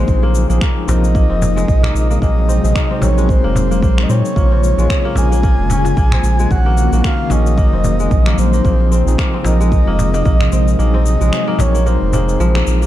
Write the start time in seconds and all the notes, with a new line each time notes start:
Already playing: G#3 A#3 C4 D#4 F#4 C5
0.08 A#1 C3 F3 G#3 C4 D#4 G#4, kick, cabasa
0.23 A#3, cajon slap
0.35 cabasa
0.49 A#1 F3 A#3 C4 D#4 G#4, cabasa
0.61 A#3, finger snap, kick, cabasa
0.86 A#1 F3 C4 D#4 D#5, cajon bass, cajon slap, cabasa
0.90 A#4
1.04 cabasa
1.15 A#3, kick, cajon slap, cabasa
1.29 F1 C4
1.42 cajon bass, cabasa
1.56 G#3, cajon slap, cabasa
1.68 A#1, kick, cabasa
1.83 A#3, finger snap, cajon bass
1.95 A#1, cabasa
2.10 A#3, cabasa
2.21 A#1 F#3 A#3 C4 D#4 G#4 D#5, kick, cabasa
2.38 cajon slap
2.48 C4, cabasa
2.63 A#1 F#3 C4 D#4 G#4, cabasa
2.75 A#3, finger snap, kick, cabasa
2.91 C4
3.00 A#1 F#3 C4 D#4 A#4 C#5, cajon bass, cajon slap, cabasa
3.18 G#3, cabasa
3.29 C5, kick, cajon slap, cabasa
3.44 F1 A#3
3.56 cajon bass, cabasa
3.71 A#3, cabasa
3.82 A#1 A#3, kick, cabasa
3.98 finger snap, cajon slap
4.03 D#5
4.09 A#2 C4 C#5, cabasa
4.25 cabasa
4.35 A#1 C#3 G#3 A#3 F4, kick, cabasa
4.51 C4, cajon slap
4.64 cabasa
4.78 A#1 C#3 G#3 A#3 F4, cabasa
4.90 finger snap, kick, cabasa
5.05 A#3
5.15 A#1 C#3 G#3 A#3 G#5, cajon bass, cajon slap, cabasa
5.19 G#4
5.32 A#3, cabasa
5.43 A#3, kick, cajon slap, cabasa
5.58 F1
5.70 C#4, cajon bass, cabasa
5.85 cajon slap, cabasa
5.97 A#1 A#3, kick, cabasa
6.12 C4, finger snap, cajon bass
6.23 A#1, cabasa
6.39 G#3, cabasa
6.50 A#1 D#3 F#3 A#3 C#4 D#4 F#4 F#5, kick, cabasa
6.66 A#3, cajon slap
6.78 cabasa
6.92 A#1 D#3 A#3 C#4 F#4, cabasa
7.04 A#3 F5, finger snap, kick, cabasa
7.29 A#1 D#3 A#3 C#4 D#5, cajon bass, cajon slap, cabasa
7.33 G#4
7.46 cabasa
7.58 A#3, kick, cajon slap, cabasa
7.73 F1 C4
7.84 cajon bass, cabasa
8.00 G#3, cabasa
8.11 A#1, kick, cabasa
8.26 A#3, finger snap, cajon slap
8.38 A#1 C5, cabasa
8.53 A#3, cabasa
8.63 A#1 C3 F3 G#3 A#3 C4 D#4 G#4, kick, cabasa
8.80 cajon slap
8.92 C4, cabasa
9.06 A#1 F3 C4 D#4 G#4, cabasa
9.18 A#3, finger snap, kick, cabasa
9.34 C4
9.43 A#1 F3 C4 D#4 D#5, cajon bass, cajon slap, cabasa
9.47 A#4
9.60 G#3, cabasa
9.72 kick, cajon slap, cabasa
9.87 F1 A#3
9.99 cajon bass, cabasa
10.14 A#3, cajon slap, cabasa
10.25 A#1 A#3, kick, cabasa
10.41 finger snap, cajon bass
10.52 A#1 C4, cabasa
10.68 cabasa
10.79 A#1 F#3 A#3 C4 D#4 G#4 D#5, cabasa
10.94 C4, cajon slap
11.06 cabasa
11.20 A#1 F#3 G#3 C4 D#4 G#4, cabasa
11.33 finger snap, cabasa
11.48 A#3
11.58 A#1 F#3 C4 D#4 A#4 C#5, cajon bass, cajon slap, cabasa
11.75 A#3, cabasa
11.86 A#3 C5, cajon slap, cabasa
12.02 F1
12.13 A#3 C4 D#4 G#4, cajon bass, cabasa
12.29 cabasa
12.40 A#1 F3, cabasa
12.55 A#3, finger snap, cajon slap
12.67 A#1, cabasa
12.82 A#3, cabasa